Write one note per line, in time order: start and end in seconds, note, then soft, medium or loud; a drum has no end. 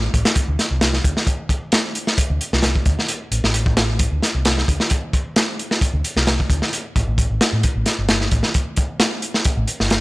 0.14 0.21 A1 medium
0.14 kick loud
0.14 closed hi-hat medium
0.25 snare loud
0.25 closed hi-hat medium
0.35 muted fingered electric bass stroke soft
0.35 kick loud
0.35 closed hi-hat medium
0.48 0.55 D2 medium
0.59 snare soft
0.59 closed hi-hat medium
0.71 0.98 C2 medium
0.81 snare loud
0.81 closed hi-hat medium
0.93 snare soft
1.04 1.12 D2 medium
1.04 kick loud
1.04 closed hi-hat medium
1.17 snare soft
1.27 kick loud
1.27 closed hi-hat medium
1.49 kick medium
1.49 closed hi-hat medium
1.72 snare loud
1.72 closed hi-hat medium
1.95 closed hi-hat medium
2.07 snare soft
2.18 muted fingered electric bass stroke soft
2.18 kick loud
2.18 closed hi-hat loud
2.30 2.37 D2 loud
2.41 closed hi-hat medium
2.53 2.80 C2 medium
2.53 snare soft
2.63 snare loud
2.63 closed hi-hat medium
2.76 kick loud
2.86 2.94 D2 loud
2.86 kick loud
2.86 closed hi-hat medium
2.99 snare soft
3.08 closed hi-hat loud
3.31 3.39 A1 medium
3.31 closed hi-hat medium
3.43 4.05 A1 loud
3.43 snare medium
3.54 closed hi-hat medium
3.66 kick loud
3.77 snare loud
3.77 closed hi-hat medium
3.99 kick loud
3.99 closed hi-hat loud
4.11 4.19 D2 loud
4.22 snare soft
4.22 closed hi-hat medium
4.35 4.62 C2 medium
4.45 snare loud
4.45 closed hi-hat medium
4.58 snare soft
4.68 4.76 D2 loud
4.68 kick medium
4.68 closed hi-hat medium
4.80 snare soft
4.90 kick loud
4.90 closed hi-hat medium
5.13 kick loud
5.13 closed hi-hat medium
5.36 snare loud
5.36 closed hi-hat medium
5.59 closed hi-hat medium
5.71 snare soft
5.81 muted fingered electric bass stroke soft
5.81 kick loud
5.81 closed hi-hat medium
5.93 6.00 D2 loud
6.04 closed hi-hat medium
6.16 6.44 C2 medium
6.16 snare soft
6.27 snare loud
6.27 closed hi-hat medium
6.40 kick medium
6.50 6.58 D2 loud
6.50 kick loud
6.50 closed hi-hat medium
6.62 snare soft
6.73 closed hi-hat medium
6.96 7.03 A1 medium
6.96 kick medium
6.96 closed hi-hat medium
7.07 7.29 A1 loud
7.18 kick medium
7.18 closed hi-hat medium
7.30 7.37 A1 loud
7.41 snare loud
7.41 closed hi-hat medium
7.53 7.63 A2 medium
7.63 muted fingered electric bass stroke soft
7.63 kick loud
7.63 closed hi-hat medium
7.76 7.82 A1 medium
7.86 snare soft
7.86 closed hi-hat medium
7.98 8.26 G1 medium
8.09 snare loud
8.09 closed hi-hat medium
8.21 snare soft
8.31 8.40 A1 loud
8.31 kick loud
8.31 closed hi-hat medium
8.43 snare soft
8.54 kick loud
8.54 closed hi-hat medium
8.76 kick loud
8.76 closed hi-hat medium
9.00 snare loud
9.00 closed hi-hat loud
9.22 closed hi-hat medium
9.34 snare soft
9.44 muted fingered electric bass stroke soft
9.44 kick loud
9.44 closed hi-hat medium
9.57 9.64 A1 loud
9.68 closed hi-hat medium
9.80 10.01 G1 medium
9.80 snare soft
9.90 snare loud
9.90 closed hi-hat medium